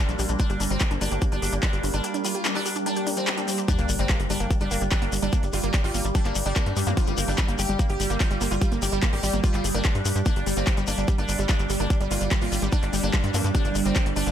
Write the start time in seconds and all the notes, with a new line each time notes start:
Already playing: G3 A#3 D4 G4 D5 C6
0.09 A#1 G3, closed hi-hat, shekere
0.19 A#1 G4, open hi-hat, shekere
0.29 A#1 D4, closed hi-hat, shekere
0.39 G3 D4, kick, closed hi-hat, shekere
0.49 G1 G4, closed hi-hat, shekere
0.60 G1 D4, open hi-hat, shekere
0.70 G1 G3 C4, closed hi-hat, shekere
0.80 G4, kick, clap, closed hi-hat, shekere
0.91 G1 D4, closed hi-hat, shekere
1.01 G1 G3 D4, open hi-hat, shekere
1.11 G1 G4, closed hi-hat, shekere
1.21 D4, kick, closed hi-hat, shekere
1.32 G1 G3 D4, closed hi-hat, shekere
1.42 G1 G4, open hi-hat, shekere
1.52 G1 D4, closed hi-hat, shekere
1.62 G3 D4, kick, clap, closed hi-hat, shekere
1.73 G1 G4, closed hi-hat, shekere
1.83 G1 D4, open hi-hat, shekere
1.94 G1 G3 D4, closed hi-hat, shekere
2.04 G4, closed hi-hat, shekere
2.14 D4, closed hi-hat, shekere
2.25 G3 F4, open hi-hat, shekere
2.35 G4, closed hi-hat, shekere
2.45 D4, clap, closed hi-hat, shekere
2.55 G3 D4, clap, open hi-hat, shekere
2.66 G4, open hi-hat, shekere
2.75 D4, closed hi-hat, shekere
2.86 G3 D4, closed hi-hat, swell, shekere
2.96 G4, closed hi-hat, shekere
3.07 D4, open hi-hat, shekere
3.17 G3 C4, closed hi-hat, shekere
3.27 G4, clap, closed hi-hat, shekere
3.38 D4, closed hi-hat, shekere
3.48 G3, open hi-hat, shekere
3.58 G4, closed hi-hat, shekere
3.68 G3 D4 G4, kick, closed hi-hat, sub drop, shekere
3.78 G1 A#3, closed hi-hat, shekere
3.89 G1 G3, open hi-hat, shekere
3.93 G4
3.99 G1 G3 C4, closed hi-hat, shekere
4.09 A#3, kick, clap, closed hi-hat, shekere
4.20 G1 G3, closed hi-hat, shekere
4.30 G1 G3 D4, open hi-hat, shekere
4.39 G1 A#3 D5, closed hi-hat, shekere
4.51 G3, kick, closed hi-hat, shekere
4.60 G1 G3 D4 D6, closed hi-hat, shekere
4.71 G1 A#3, open hi-hat, shekere
4.81 G1 G3, closed hi-hat, shekere
4.91 G3 D4, kick, clap, closed hi-hat, shekere
5.02 G1 A#3, closed hi-hat, shekere
5.12 G1 G3, open hi-hat, shekere
5.22 G1 G3 D4, closed hi-hat, shekere
5.33 A#3, kick, closed hi-hat, shekere
5.43 G1 G3, closed hi-hat, shekere
5.53 G1 G3 F4, open hi-hat, shekere
5.63 G1 A#3, closed hi-hat, shekere
5.74 G3, kick, clap, closed hi-hat, shekere
5.84 G#1 G3 F4, open hi-hat, shekere
5.94 G#1 A#3, open hi-hat, shekere
6.05 G#1 G3, closed hi-hat, shekere
6.15 G3 D4, kick, closed hi-hat, shekere
6.25 G1 A#3, clap, closed hi-hat, shekere
6.35 G1 G3, open hi-hat, shekere
6.45 G1 G3 D4, closed hi-hat, shekere
6.56 A#3, kick, clap, closed hi-hat, shekere
6.66 G2 G3, closed hi-hat, shekere
6.76 G2 G3, open hi-hat, shekere
6.87 G2 A#3, closed hi-hat, zap, shekere
6.97 G3 F4, kick, closed hi-hat, shekere
7.07 G1 G3, closed hi-hat, shekere
7.17 G1 A#3, open hi-hat, shekere
7.28 G1 G3 D4, closed hi-hat, shekere
7.38 G3, kick, clap, closed hi-hat, shekere
7.48 G1 A#3, closed hi-hat, shekere
7.59 G1 G3 G4, open hi-hat, shekere
7.69 G1 G3, closed hi-hat, shekere
7.79 A#3, kick, closed hi-hat, shekere
7.89 G1 G3 G4, closed hi-hat, shekere
8.00 G1 G3, open hi-hat, shekere
8.10 G1 A#3, closed hi-hat, shekere
8.20 G3 F4, kick, clap, closed hi-hat, shekere
8.31 G1 G3, closed hi-hat, shekere
8.41 G1 A#3, open hi-hat, shekere
8.51 G1 G3 F4, closed hi-hat, shekere
8.61 G3, kick, closed hi-hat, shekere
8.72 G1 A#3, closed hi-hat, shekere
8.82 G1 G3 G4, open hi-hat, shekere
8.92 G1 G3, closed hi-hat, shekere
9.02 A#3, kick, clap, closed hi-hat, shekere
9.13 G#1 G3 G4, open hi-hat, shekere
9.23 G#1 G3, open hi-hat, shekere
9.33 G#1 A#3, closed hi-hat, shekere
9.44 G3 F4, kick, closed hi-hat, shekere
9.54 G1 G3, clap, closed hi-hat, shekere
9.64 G1 G#4, open hi-hat, shekere
9.74 G1 A#3 D4, closed hi-hat, shekere
9.84 G3, kick, clap, closed hi-hat, shekere
9.95 G2 G3, closed hi-hat, shekere
10.05 G2 G3, open hi-hat, shekere
10.16 G2 G4, closed hi-hat, shekere
10.26 A#3 D4, kick, closed hi-hat, shekere
10.36 G1 G3, closed hi-hat, shekere
10.46 G1 G3, open hi-hat, shekere
10.57 G1 A#3 C4, closed hi-hat, shekere
10.67 G3, kick, clap, closed hi-hat, shekere
10.77 G1 G3, closed hi-hat, shekere
10.87 G1 A#3 D4, open hi-hat, shekere
10.98 G1 G3, closed hi-hat, shekere
11.08 G3, kick, closed hi-hat, shekere
11.18 G1 A#3 D4 G6, closed hi-hat, shekere
11.29 G1 G3, open hi-hat, shekere
11.39 G1 G3, closed hi-hat, shekere
11.49 A#3 D4, kick, clap, closed hi-hat, shekere
11.59 G1 G3, closed hi-hat, shekere
11.70 G1 G3, open hi-hat, shekere
11.79 G1 A#3 D4, closed hi-hat, shekere
11.90 G3, kick, closed hi-hat, shekere
12.01 G1 G3, closed hi-hat, shekere
12.11 G1 A#3 F4, open hi-hat, shekere
12.21 G1 G3, closed hi-hat, shekere
12.31 G3, kick, clap, closed hi-hat, shekere
12.41 G#1 A#3 F4, open hi-hat, shekere
12.52 G#1 G3, open hi-hat, shekere
12.62 G#1 G3, closed hi-hat, shekere
12.72 A#3 D4, kick, closed hi-hat, shekere
12.82 G1 G3, clap, closed hi-hat, shekere
12.93 G1 G3, open hi-hat, shekere
13.03 G1 A#3 D4, closed hi-hat, shekere
13.13 G3, kick, clap, closed hi-hat, shekere
13.23 G2 G3, closed hi-hat, shekere
13.34 G2 A#3, open hi-hat, zap, shekere
13.44 G2 G3, closed hi-hat, shekere
13.55 G3 D4, kick, closed hi-hat, shekere
13.65 G1 A#3, closed hi-hat, shekere
13.75 G1 G3, open hi-hat, shekere
13.85 G1 G3 C4, closed hi-hat, shekere
13.95 A#3, kick, clap, closed hi-hat, shekere
14.06 G1 G3, closed hi-hat, shekere
14.16 G1 G3 D4, open hi-hat, shekere
14.27 G1 A#3, closed hi-hat, shekere